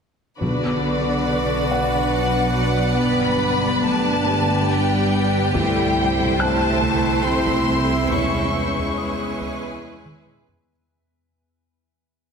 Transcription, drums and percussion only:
0.41 taiko
5.55 taiko
6.19 taiko
6.83 taiko
7.47 taiko
8.12 taiko
8.76 taiko
9.40 taiko
10.05 taiko mid
10.26 taiko low-mid
10.47 taiko low

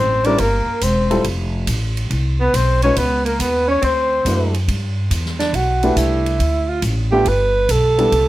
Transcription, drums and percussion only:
0.24 ride
0.38 kick, ride
0.81 kick, hi-hat pedal, ride
1.11 ride
1.24 kick, ride
1.67 kick, hi-hat pedal, ride
1.97 ride
2.11 kick, ride
2.54 kick, hi-hat pedal, ride
2.82 ride
2.96 kick, ride
3.26 ride
3.40 kick, hi-hat pedal, ride
3.82 kick, ride
4.25 kick, hi-hat pedal, ride
4.54 ride
4.68 kick, ride
5.11 kick, hi-hat pedal, ride
5.26 snare
5.39 snare, ride
5.54 kick, ride
5.83 ride
5.97 kick, hi-hat pedal, ride
6.26 ride
6.40 kick, ride
6.82 kick, hi-hat pedal, ride
7.26 kick, ride
7.69 kick, hi-hat pedal, ride
7.99 ride
8.12 kick, ride

